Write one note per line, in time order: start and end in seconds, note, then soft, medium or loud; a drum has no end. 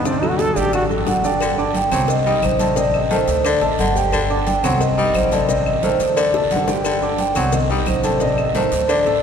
0.00 0.50 D2 medium
0.05 0.19 D3 medium
0.05 0.21 C4 medium
0.05 0.19 D4 medium
0.05 0.20 D5 medium
0.05 high bongo medium
0.05 high conga soft
0.05 long guiro medium
0.05 maracas loud
0.20 0.50 F#3 medium
0.20 0.31 D#4 medium
0.20 0.50 F#4 medium
0.20 0.50 A4 medium
0.20 high bongo soft
0.20 high conga soft
0.20 claves medium
0.20 maracas soft
0.29 0.42 F#4 loud
0.39 0.59 A4 loud
0.39 high bongo medium
0.39 high conga loud
0.39 short guiro medium
0.39 maracas soft
0.56 1.04 A1 medium
0.56 0.84 D3 medium
0.56 0.84 D4 medium
0.56 0.74 G4 loud
0.56 0.84 D5 medium
0.56 short guiro medium
0.56 maracas medium
0.73 0.85 F#4 medium
0.73 high bongo medium
0.73 long guiro medium
0.73 claves medium
0.73 maracas medium
0.90 1.18 F#3 medium
0.90 1.18 F#4 medium
0.90 1.18 A4 medium
0.90 high bongo soft
0.90 high conga soft
0.90 maracas soft
1.07 1.86 G1 medium
1.07 1.16 F#5 loud
1.07 high bongo medium
1.07 low bongo medium
1.07 high conga medium
1.07 short guiro medium
1.07 maracas soft
1.24 1.38 D3 medium
1.24 1.38 D4 medium
1.24 1.38 D5 medium
1.24 1.57 G5 loud
1.24 high bongo soft
1.24 short guiro medium
1.24 maracas medium
1.40 1.69 D3 medium
1.40 cowbell loud
1.40 high conga soft
1.40 long guiro medium
1.40 claves medium
1.40 maracas medium
1.58 1.86 D4 medium
1.58 1.86 D5 medium
1.58 1.67 A5 loud
1.58 1.86 D6 medium
1.58 high conga soft
1.58 maracas soft
1.75 2.11 G5 loud
1.75 cowbell medium
1.75 high conga loud
1.75 short guiro medium
1.75 maracas soft
1.91 2.39 C2 medium
1.91 2.10 F#3 medium
1.91 2.20 C4 medium
1.91 2.20 C5 medium
1.91 2.20 C6 medium
1.91 cowbell medium
1.91 high conga soft
1.91 low conga medium
1.91 short guiro medium
1.91 claves medium
1.91 maracas medium
2.08 2.41 D#5 loud
2.08 cowbell loud
2.08 high conga soft
2.08 long guiro medium
2.08 maracas medium
2.26 2.44 G3 medium
2.26 2.54 D#4 medium
2.26 2.54 D#5 medium
2.26 2.54 D#6 medium
2.26 high conga soft
2.26 maracas soft
2.42 3.22 A1 loud
2.42 2.75 C5 medium
2.42 cowbell medium
2.42 high conga medium
2.42 short guiro medium
2.42 claves medium
2.42 maracas soft
2.59 2.88 D3 medium
2.59 2.74 A3 medium
2.59 2.74 A4 medium
2.59 2.74 A5 medium
2.59 cowbell medium
2.59 high conga medium
2.59 short guiro medium
2.59 maracas medium
2.76 3.05 C3 medium
2.76 3.05 C4 medium
2.76 2.93 D5 loud
2.76 3.05 D#5 medium
2.76 cowbell loud
2.76 high conga soft
2.76 long guiro medium
2.76 maracas loud
2.94 3.12 D#5 medium
2.94 high conga soft
2.94 claves medium
2.94 maracas soft
3.10 3.28 D#3 medium
3.10 3.39 A3 medium
3.10 3.39 A4 medium
3.10 3.43 C5 loud
3.10 3.39 A5 medium
3.10 cowbell medium
3.10 high conga medium
3.10 short guiro medium
3.10 maracas soft
3.27 3.59 D2 loud
3.27 cowbell medium
3.27 short guiro medium
3.27 maracas medium
3.44 3.63 D3 loud
3.44 3.58 D4 medium
3.44 3.59 D5 medium
3.44 3.61 D5 loud
3.44 3.59 D6 medium
3.44 cowbell loud
3.44 high conga soft
3.44 long guiro medium
3.44 claves medium
3.44 maracas medium
3.61 3.77 A1 medium
3.61 3.89 A3 medium
3.61 3.90 A4 medium
3.61 3.78 D#5 medium
3.61 3.90 A5 medium
3.61 cowbell medium
3.61 high conga soft
3.61 maracas soft
3.78 4.58 G1 loud
3.78 3.97 D3 medium
3.78 3.87 F#5 medium
3.78 cowbell medium
3.78 high conga medium
3.78 short guiro medium
3.78 maracas soft
3.95 4.24 G3 medium
3.95 4.24 G4 medium
3.95 4.27 G5 medium
3.95 4.24 G5 medium
3.95 high conga soft
3.95 short guiro medium
3.95 maracas medium
4.12 4.40 D3 medium
4.12 cowbell loud
4.12 high conga soft
4.12 long guiro medium
4.12 claves medium
4.12 maracas medium
4.30 4.58 D4 medium
4.30 4.58 D5 medium
4.30 4.38 A5 loud
4.30 4.58 D6 medium
4.30 high conga soft
4.30 maracas soft
4.46 4.54 G5 loud
4.46 cowbell medium
4.46 high conga loud
4.46 short guiro medium
4.46 maracas soft
4.63 5.11 C2 loud
4.63 4.82 F#3 medium
4.63 4.92 C4 medium
4.63 4.92 C5 medium
4.63 4.72 F#5 loud
4.63 4.92 C6 medium
4.63 cowbell medium
4.63 high conga soft
4.63 low conga medium
4.63 short guiro medium
4.63 claves medium
4.63 maracas medium
4.80 5.16 D#5 loud
4.80 cowbell loud
4.80 high conga soft
4.80 long guiro medium
4.80 maracas medium
4.97 5.16 G3 medium
4.97 5.26 D#4 medium
4.97 5.26 D#5 medium
4.97 5.26 D#6 medium
4.97 high conga soft
4.97 maracas soft
5.14 5.94 A1 medium
5.14 5.31 C5 medium
5.14 cowbell medium
5.14 high conga medium
5.14 short guiro medium
5.14 claves medium
5.14 maracas soft
5.31 5.60 D3 medium
5.31 5.45 A3 medium
5.31 5.46 A4 medium
5.31 5.67 D5 loud
5.31 5.46 A5 medium
5.31 cowbell medium
5.31 high conga medium
5.31 short guiro medium
5.31 maracas medium
5.49 5.77 C3 medium
5.49 5.77 C4 medium
5.49 5.77 D#5 medium
5.49 cowbell loud
5.49 high conga soft
5.49 long guiro medium
5.49 maracas loud
5.66 5.74 D#5 medium
5.66 high conga soft
5.66 claves medium
5.66 maracas soft
5.83 6.01 D#3 medium
5.83 6.11 A3 medium
5.83 6.11 A4 medium
5.83 6.14 C5 medium
5.83 6.11 A5 medium
5.83 cowbell medium
5.83 high conga loud
5.83 short guiro medium
5.83 maracas soft
6.00 6.47 D2 medium
6.00 cowbell medium
6.00 short guiro medium
6.00 maracas medium
6.16 6.34 D3 loud
6.16 6.31 D4 medium
6.16 6.31 D5 medium
6.16 6.49 D5 loud
6.16 6.31 D6 medium
6.16 cowbell loud
6.16 high conga soft
6.16 long guiro medium
6.16 claves medium
6.16 maracas medium
6.34 6.62 A3 medium
6.34 6.62 A4 medium
6.34 6.62 A5 medium
6.34 cowbell medium
6.34 high bongo medium
6.34 high conga soft
6.34 maracas soft
6.51 7.30 G1 medium
6.51 6.69 D3 medium
6.51 6.59 F#5 medium
6.51 cowbell medium
6.51 high conga medium
6.51 short guiro medium
6.51 maracas soft
6.56 low bongo medium
6.68 6.96 G3 medium
6.68 6.96 G4 medium
6.68 6.96 G5 medium
6.68 low bongo loud
6.68 short guiro medium
6.68 maracas medium
6.84 7.13 D3 loud
6.84 cowbell loud
6.84 long guiro medium
6.84 claves medium
6.84 maracas medium
7.02 7.30 D4 medium
7.02 7.30 D5 medium
7.02 7.18 A5 loud
7.02 7.30 D6 medium
7.02 high conga soft
7.02 maracas soft
7.18 7.35 G5 loud
7.18 cowbell medium
7.18 high conga loud
7.18 short guiro medium
7.18 maracas soft
7.35 7.83 C2 medium
7.35 7.54 F#3 medium
7.35 7.64 C4 medium
7.35 7.64 C5 medium
7.35 7.44 F#5 medium
7.35 7.64 C6 medium
7.35 cowbell medium
7.35 high conga soft
7.35 low conga medium
7.35 short guiro medium
7.35 claves medium
7.35 maracas medium
7.52 7.85 D#5 loud
7.52 cowbell loud
7.52 high conga soft
7.52 low conga medium
7.52 long guiro medium
7.52 maracas loud
7.70 7.88 G3 medium
7.70 7.98 D#4 medium
7.70 7.98 D#5 medium
7.70 7.98 D#6 medium
7.70 high conga soft
7.70 maracas soft
7.86 8.66 A1 medium
7.86 8.19 C5 medium
7.86 cowbell medium
7.86 high conga medium
7.86 short guiro medium
7.86 claves medium
7.86 maracas soft
8.04 8.31 D3 medium
8.04 8.18 A3 medium
8.04 8.18 A4 medium
8.04 8.18 A5 medium
8.04 cowbell medium
8.04 high conga medium
8.04 short guiro medium
8.04 maracas medium
8.20 8.49 C3 medium
8.20 8.49 C4 medium
8.20 8.39 D5 medium
8.20 8.49 D#5 medium
8.20 cowbell loud
8.20 high conga soft
8.20 long guiro medium
8.20 maracas loud
8.38 8.56 D#5 loud
8.38 high conga soft
8.38 claves medium
8.38 maracas soft
8.55 8.73 D#3 medium
8.55 8.83 A3 medium
8.55 8.83 A4 medium
8.55 8.87 C5 medium
8.55 8.83 A5 medium
8.55 cowbell medium
8.55 high conga loud
8.55 short guiro medium
8.55 maracas soft
8.71 9.03 D2 medium
8.71 cowbell medium
8.71 short guiro medium
8.71 maracas medium
8.88 9.06 D3 loud
8.88 9.03 D4 medium
8.88 9.03 D5 medium
8.88 9.23 D5 loud
8.88 9.03 D6 medium
8.88 cowbell loud
8.88 high conga soft
8.88 long guiro medium
8.88 claves medium
8.88 maracas medium
9.06 9.22 A1 medium
9.06 9.23 A3 medium
9.06 9.23 A4 medium
9.06 9.23 A5 medium
9.06 cowbell medium
9.06 high conga soft
9.06 maracas soft